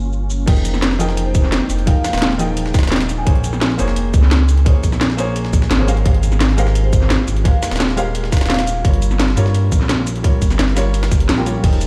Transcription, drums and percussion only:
0.13 shaker
0.30 shaker
0.47 kick, closed hi-hat, crash
0.56 closed hi-hat
0.65 closed hi-hat, shaker
0.74 snare, shaker
0.82 snare, closed hi-hat
0.91 snare
1.00 closed hi-hat, shaker
1.09 snare
1.17 closed hi-hat, shaker
1.35 kick, closed hi-hat, shaker
1.44 snare
1.52 snare, closed hi-hat
1.70 closed hi-hat, shaker
1.78 closed hi-hat
1.87 kick, closed hi-hat
2.04 snare, closed hi-hat, shaker
2.13 snare, closed hi-hat, shaker
2.18 snare, closed hi-hat
2.22 snare, closed hi-hat
2.31 snare
2.39 closed hi-hat, shaker
2.57 closed hi-hat, shaker
2.66 snare
2.74 kick, snare, closed hi-hat, shaker
2.79 snare, closed hi-hat
2.83 snare, closed hi-hat
2.87 snare, closed hi-hat
2.92 snare, closed hi-hat
2.96 snare, closed hi-hat
3.00 snare, closed hi-hat
3.09 closed hi-hat, shaker
3.27 kick, closed hi-hat
3.35 closed hi-hat
3.44 closed hi-hat, shaker
3.53 snare, shaker
3.61 snare, closed hi-hat
3.70 snare
3.79 closed hi-hat, shaker
3.88 snare
3.96 closed hi-hat, shaker
4.14 kick, closed hi-hat, shaker
4.23 snare
4.31 snare, closed hi-hat
4.49 closed hi-hat, shaker
4.57 closed hi-hat
4.66 kick, closed hi-hat
4.83 kick, closed hi-hat, shaker
4.92 snare, shaker
5.01 snare, closed hi-hat
5.10 snare
5.18 closed hi-hat, shaker
5.36 closed hi-hat, shaker
5.45 snare
5.53 kick, closed hi-hat, shaker
5.62 snare
5.71 snare, closed hi-hat
5.88 closed hi-hat, shaker
5.97 closed hi-hat
6.06 kick, closed hi-hat
6.14 closed hi-hat
6.23 closed hi-hat, shaker
6.32 snare, shaker
6.40 snare, closed hi-hat
6.49 snare
6.58 closed hi-hat, shaker
6.67 snare
6.75 closed hi-hat, shaker
6.93 kick, closed hi-hat, shaker
7.02 snare
7.10 snare, closed hi-hat
7.28 closed hi-hat, shaker
7.36 closed hi-hat
7.45 kick, closed hi-hat
7.63 snare, closed hi-hat, shaker
7.71 snare, closed hi-hat, shaker
7.76 snare, closed hi-hat
7.80 snare, closed hi-hat
7.89 snare
7.97 closed hi-hat, shaker
8.15 closed hi-hat, shaker
8.24 snare
8.32 kick, snare, closed hi-hat, shaker
8.37 snare, closed hi-hat
8.41 snare, closed hi-hat
8.46 snare, closed hi-hat
8.50 snare, closed hi-hat
8.54 snare, closed hi-hat
8.59 snare, closed hi-hat
8.67 closed hi-hat, shaker
8.85 kick, closed hi-hat
8.93 closed hi-hat
9.02 closed hi-hat, shaker
9.11 snare, shaker
9.19 snare, closed hi-hat
9.28 snare
9.37 closed hi-hat, shaker
9.46 snare
9.54 closed hi-hat, shaker
9.72 kick, closed hi-hat, shaker
9.81 snare
9.89 snare, closed hi-hat
10.07 closed hi-hat, shaker
10.16 closed hi-hat
10.24 kick, closed hi-hat
10.42 kick, closed hi-hat, shaker
10.50 snare, shaker
10.59 snare, closed hi-hat
10.68 snare
10.77 snare, closed hi-hat, shaker
10.94 closed hi-hat, shaker
11.03 snare, closed hi-hat
11.11 kick, snare, closed hi-hat, shaker
11.20 closed hi-hat
11.29 snare, closed hi-hat, shaker
11.38 snare
11.46 closed hi-hat, shaker
11.64 kick, closed hi-hat, crash
11.73 closed hi-hat
11.81 closed hi-hat, shaker

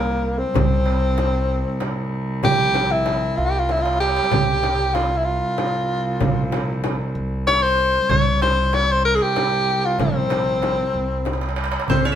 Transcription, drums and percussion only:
0.54 darbuka dum, frame drum
0.86 darbuka tek
1.18 darbuka tek, frame drum
1.33 darbuka ka
1.80 darbuka tek, frame drum
2.43 darbuka dum, frame drum
2.74 darbuka tek, frame drum
3.06 darbuka tek, frame drum
3.22 darbuka ka
3.69 darbuka tek, frame drum
3.77 darbuka ka
3.86 darbuka tek
3.93 darbuka ka
4.01 darbuka tek
4.09 darbuka ka
4.17 darbuka tek
4.24 darbuka ka
4.31 frame drum, darbuka dum
4.63 darbuka tek, frame drum
4.95 darbuka tek, frame drum
5.10 darbuka ka
5.58 darbuka tek, frame drum
6.20 darbuka dum, frame drum
6.52 darbuka tek, frame drum
6.84 darbuka tek, frame drum
7.47 darbuka tek, frame drum
8.10 darbuka dum, frame drum
8.41 darbuka tek, frame drum
8.73 darbuka tek, frame drum
8.90 darbuka ka
9.36 darbuka tek, frame drum
9.99 darbuka dum, frame drum
10.30 darbuka tek, frame drum
10.62 darbuka tek, frame drum
10.78 darbuka ka
11.25 darbuka tek, frame drum
11.33 darbuka ka
11.41 darbuka tek
11.49 darbuka ka
11.56 darbuka tek
11.64 darbuka ka
11.72 darbuka tek
11.80 darbuka ka
11.88 darbuka dum, frame drum

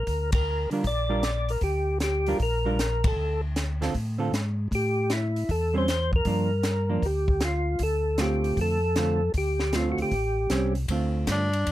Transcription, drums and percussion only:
0.07 kick, open hi-hat
0.32 kick, ride
0.71 open hi-hat
0.84 kick, open hi-hat
1.23 snare, closed hi-hat
1.49 open hi-hat
1.61 kick, open hi-hat
2.00 snare, closed hi-hat
2.26 open hi-hat
2.40 kick, open hi-hat
2.79 snare, closed hi-hat
3.04 kick, ride
3.56 snare, closed hi-hat
3.82 snare, open hi-hat
3.94 kick, open hi-hat
4.34 snare, closed hi-hat
4.72 kick, open hi-hat
5.10 snare, closed hi-hat
5.36 open hi-hat
5.49 kick, open hi-hat
5.88 snare, closed hi-hat
6.13 kick
6.25 kick, open hi-hat
6.63 snare, closed hi-hat
7.02 kick, open hi-hat
7.28 kick
7.40 snare, closed hi-hat
7.79 kick, open hi-hat
8.18 snare, closed hi-hat
8.44 open hi-hat
8.57 kick, open hi-hat
8.96 snare, closed hi-hat
9.34 kick, open hi-hat
9.60 snare
9.73 snare, closed hi-hat
9.98 open hi-hat
10.11 kick, open hi-hat
10.50 snare, closed hi-hat
10.75 open hi-hat
10.88 kick, ride
11.27 kick, snare, hi-hat pedal, ride
11.53 ride
11.66 kick, ride

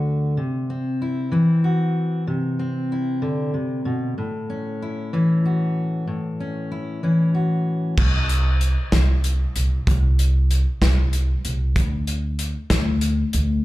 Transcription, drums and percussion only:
7.97 kick, crash
8.29 closed hi-hat
8.61 closed hi-hat
8.92 kick, snare, closed hi-hat
9.24 closed hi-hat
9.56 closed hi-hat
9.87 kick, closed hi-hat
10.19 closed hi-hat
10.51 closed hi-hat
10.82 kick, snare, closed hi-hat
11.13 closed hi-hat
11.45 closed hi-hat
11.76 kick, closed hi-hat
12.07 closed hi-hat
12.39 closed hi-hat
12.70 kick, snare, closed hi-hat
13.01 closed hi-hat
13.33 closed hi-hat

